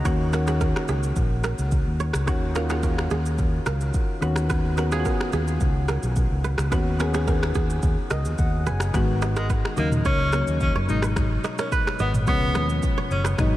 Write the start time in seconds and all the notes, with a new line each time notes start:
0.04 D#2 D#3 A#3 C#4 F#4 C#5, finger snap, kick, cross-stick, shaker
0.32 D#3 A#3 C#4 F#4 A#4, finger snap, cross-stick, shaker
0.46 D#3 A#3 C#4 F#4 G#4, finger snap, cross-stick, shaker
0.61 A#4, kick, shaker
0.76 finger snap, cross-stick
0.88 C#2 G#4, shaker
1.03 shaker
1.16 A#1, kick, shaker
1.44 A#4, finger snap, cross-stick, shaker
1.58 C#2, shaker
1.71 kick, shaker
1.86 D#2
2.00 C#5, shaker
2.13 C#2, finger snap, cross-stick, shaker
2.26 D#2 D#3 A#3 C#4 F#4 C#5, finger snap, kick, cross-stick, shaker
2.54 D#3 A#3 C#4 F4 A#4, finger snap, cross-stick, shaker
2.69 D#3 A#3 C#4 F4 G#4, finger snap, cross-stick, shaker
2.83 A#4, kick, shaker
2.98 finger snap, cross-stick
3.10 D#2 G#4, shaker
3.26 shaker
3.38 kick, shaker
3.66 C#2 A#4, finger snap, cross-stick, shaker
3.81 shaker
3.94 kick, shaker
4.21 D#2 D#3 B3 C#4 F#4 B4, shaker
4.36 finger snap, cross-stick, shaker
4.50 B4, finger snap, kick, cross-stick, shaker
4.76 D#3 B3 C#4 F#4 A#4, finger snap, cross-stick, shaker
4.91 D#3 B3 C#4 F4 G#4, finger snap, cross-stick, shaker
5.00 F#4
5.05 A#4, kick, shaker
5.21 finger snap, cross-stick
5.32 D#2 G#4, shaker
5.48 shaker
5.60 C#2, kick, shaker
5.88 A#4, finger snap, cross-stick, shaker
6.03 B1, shaker
6.16 kick, shaker
6.31 C#2
6.44 B4, shaker
6.58 C#2, finger snap, cross-stick, shaker
6.71 D#2 D#3 B3 C#4 F#4 B4, finger snap, kick, cross-stick, shaker
6.99 D#3 B3 C#4 G#4 A#4, finger snap, cross-stick, shaker
7.13 D#3 B3 C#4 G#4, finger snap, cross-stick, shaker
7.27 A#4, kick, shaker
7.43 finger snap, cross-stick
7.55 D#2 G#4, kick, shaker
7.70 shaker
7.83 D#2, kick, shaker
8.10 C#2 A#4 D#5, finger snap, cross-stick, shaker
8.25 D#2, shaker
8.38 D#2 F#5, kick, shaker
8.66 F#1 B4 G#5, shaker
8.80 finger snap, cross-stick, shaker
8.93 G#1 D#3 G#3 B3 F#4, finger snap, kick, cross-stick, shaker
9.22 D#5, finger snap, cross-stick, shaker
9.36 G#3 A#4, finger snap, cross-stick, shaker
9.50 B4, kick, shaker
9.65 finger snap, cross-stick
9.76 D#2 C#3 F#3 A#3 D#4 D#5, shaker
9.92 mid tom, shaker
10.05 C#2 C#4 C#5, kick, shaker
10.32 C#3 F#3 A#3 C#4 A#4, finger snap, cross-stick, shaker
10.47 D#2, shaker
10.60 C#4, kick, shaker
10.75 F#2 C#5
10.87 G#1 B2 F#3 G#3 D#4, shaker
11.02 B4, finger snap, cross-stick, shaker
11.16 finger snap, kick, cross-stick, shaker
11.44 D#5, finger snap, cross-stick, shaker
11.58 C#4 A#4, finger snap, cross-stick, shaker
11.72 B4, kick, shaker
11.87 finger snap, cross-stick
11.99 G#1 B3 D#5, shaker
12.14 mid tom, shaker
12.26 C#2 B2 F3 G#3 B3 C#4 C#5, kick, shaker
12.54 D#2 B2 F3 G#3 C#4 B4, finger snap, cross-stick, shaker
12.69 shaker
12.82 kick, shaker
12.98 C#5
13.11 F#1 C#4, shaker
13.24 B4, finger snap, cross-stick, shaker
13.37 G#1 B2 F#3 G#3 D#4, finger snap, kick, cross-stick, shaker